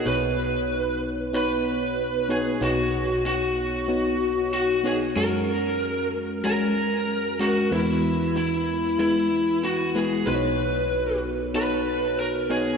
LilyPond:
<<
  \new Staff \with { instrumentName = "Lead electric guitar" } { \time 4/4 \key b \major \tempo 4 = 94 b'4. r8 b'4. gis'8 | fis'4 fis'2 fis'8 gis'8 | ais'4. r8 ais'4. fis'8 | e'4 e'4 e'4 fis'8 gis'8 |
b'4. r8 b'4 ais'8 gis'8 | }
  \new Staff \with { instrumentName = "FM electric piano" } { \time 4/4 \key b \major <b dis' fis' cis''>2 <b dis' fis' cis''>4. <b dis' fis' cis''>8 | <b dis' fis' cis''>2 <b dis' fis' cis''>4. <b dis' fis' cis''>8 | <gis cis' fis' a' ais'>2 <gis cis' fis' ais'>4. <gis cis' fis' ais'>8 | <gis b e' b'>2 <gis b e' b'>4. <gis b e' b'>8 |
<b dis' fis' c'' cis''>2 <b dis' fis' cis''>4. <b dis' fis' cis''>8 | }
  \new Staff \with { instrumentName = "FM electric piano" } { \clef bass \time 4/4 \key b \major <b,, b,>1 | <b,, b,>1 | fis,1 | <e, e>1 |
<b,, b,>1 | }
>>